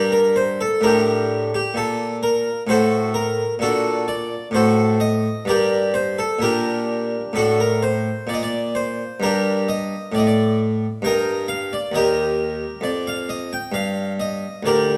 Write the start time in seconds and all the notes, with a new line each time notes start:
Already playing: G2 D5
0.12 A#4
0.36 C5
0.61 A4
0.81 A2 D4 G4 A#4
1.54 G4
1.74 A#2 A4
2.23 A#4
2.67 A2 F#4 A4 C5
3.14 A#4
3.59 A#2 D4 F#4 A4
4.08 D5
4.51 A2 F#4 C5
4.55 A4
5.00 D#5
5.45 G2 G4 A#4 D5
5.94 C5
6.18 A4
6.39 A#2 D4 G4 A#4
7.33 A2 F#4 A4
7.37 D4
7.60 A#4
7.82 C5
8.27 A#2 D5
8.34 D#5
8.43 D5
8.75 C5
9.20 G2 D4 G4 A#4
9.69 D#5
10.12 A2 D5
10.18 D#5
10.27 D5
11.02 G2 A#4 D#5 G5
11.48 F5
11.73 D5
11.92 D#2 G4 A#4 D#5
12.81 F2 D5
13.07 F5
13.29 D#5
13.53 G5
13.72 G2 F5
14.20 D#5
14.63 D2 G4 A#4 D5